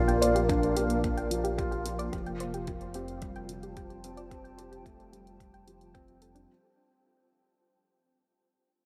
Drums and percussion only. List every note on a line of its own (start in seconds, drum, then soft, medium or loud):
0.09 closed hi-hat soft
0.22 closed hi-hat medium
0.36 closed hi-hat soft
0.49 kick medium
0.49 closed hi-hat soft
0.63 closed hi-hat soft
0.77 closed hi-hat medium
0.90 closed hi-hat soft
1.04 kick medium
1.04 closed hi-hat soft
1.18 closed hi-hat soft
1.31 closed hi-hat medium
1.45 closed hi-hat soft
1.59 kick medium
1.59 closed hi-hat soft
1.72 closed hi-hat soft
1.86 closed hi-hat medium
1.99 closed hi-hat soft
2.13 kick medium
2.13 closed hi-hat soft
2.26 closed hi-hat soft
2.40 closed hi-hat medium
2.54 closed hi-hat soft
2.67 kick medium
2.67 closed hi-hat soft
2.81 closed hi-hat soft
2.94 closed hi-hat medium
3.08 closed hi-hat soft
3.22 kick medium
3.22 closed hi-hat soft
3.36 closed hi-hat soft
3.49 closed hi-hat medium
3.63 closed hi-hat soft
3.77 kick medium
3.77 closed hi-hat soft
3.90 closed hi-hat soft
4.04 closed hi-hat medium
4.17 closed hi-hat soft
4.31 kick medium
4.31 closed hi-hat soft
4.45 closed hi-hat soft
4.59 closed hi-hat medium
4.73 closed hi-hat soft
4.86 kick medium
4.86 closed hi-hat soft
5.00 closed hi-hat soft
5.13 closed hi-hat medium
5.27 closed hi-hat soft
5.40 kick medium
5.40 closed hi-hat soft
5.54 closed hi-hat soft
5.68 closed hi-hat medium
5.81 closed hi-hat soft
5.95 kick medium
5.95 closed hi-hat soft
6.08 closed hi-hat soft
6.22 closed hi-hat medium
6.36 closed hi-hat soft